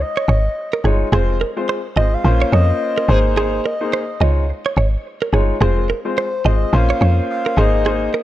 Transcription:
0.01 soft synth lead D#5
0.17 clean electric guitar C#5
0.28 log drum bass G#1, clean electric guitar C#5
0.73 clean electric guitar A#4
0.84 log drum bass G1, grand piano G#3 D#4 F4 C#5, clean electric guitar G#4
1.12 log drum bass F1, grand piano G#3 C4 F4 C5, clean electric guitar G#4
1.41 clean electric guitar A#4
1.56 grand piano G#3 C4 F4 C5
1.69 clean electric guitar C5
1.96 log drum bass G#1, grand piano G#3 C4 F4 C5, clean electric guitar D#5, soft synth lead D#5
2.14 soft synth lead F5
2.24 log drum bass A#1, grand piano A#3 C#4 F4 C5
2.42 clean electric guitar C#5
2.53 log drum bass F2, clean electric guitar C#5, soft synth lead D#5
2.98 clean electric guitar A#4
3.08 log drum bass G#1, grand piano A#3 D#4 G#4 C5, clean electric guitar G#4, soft synth lead C5
3.36 grand piano A#3 D#4 G#4 C5, clean electric guitar G#4, soft synth lead C5
3.66 clean electric guitar A#4, soft synth lead D#5
3.81 grand piano A#3 D#4 G#4 C5
3.93 clean electric guitar C5
4.20 log drum bass C#2, grand piano G#3 D#4 F4 C#5, clean electric guitar D#5
4.66 clean electric guitar C#5
4.77 log drum bass G#1, clean electric guitar C#5
5.22 clean electric guitar A#4
5.32 log drum bass G1, grand piano G#3 D#4 F4 C#5, clean electric guitar G#4
5.60 log drum bass F1, grand piano G#3 C4 F4 C5, clean electric guitar G#4
5.90 clean electric guitar A#4
6.05 grand piano G#3 C4 F4 C5
6.18 clean electric guitar C5, soft synth lead C5
6.45 log drum bass G#1, grand piano G#3 C4 F4 C5, clean electric guitar D#5, soft synth lead D#5
6.73 log drum bass A#1, grand piano A#3 C#4 F4 C5, soft synth lead F5
6.90 clean electric guitar C#5
7.01 log drum bass F2, clean electric guitar C#5
7.30 soft synth lead F5
7.46 clean electric guitar A#4
7.57 log drum bass G#1, grand piano A#3 D#4 G#4 C5, clean electric guitar G#4, soft synth lead D#5
7.85 grand piano A#3 D#4 G#4 C5, clean electric guitar G#4
8.14 clean electric guitar A#4

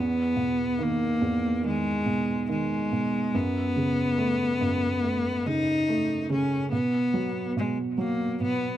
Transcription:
Already playing: upright piano E2, cello B3
0.36 upright piano B2
0.79 upright piano D#3, cello A#3
1.21 upright piano E2
1.63 upright piano D#3, cello G#3
2.06 upright piano B2
2.49 upright piano D#3, cello G#3
2.92 upright piano B2
3.34 upright piano F#2, cello B3
3.76 upright piano C#3
4.17 upright piano A3
4.61 upright piano F#2
5.03 upright piano A3
5.46 upright piano C#3, cello D#4
5.89 upright piano A3
6.30 upright piano C#3, cello C#4
6.72 upright piano B2, cello B3
7.14 upright piano F#3
7.57 upright piano B2, cello G#3
7.98 upright piano F#3, cello A#3
8.41 upright piano B2, cello B3

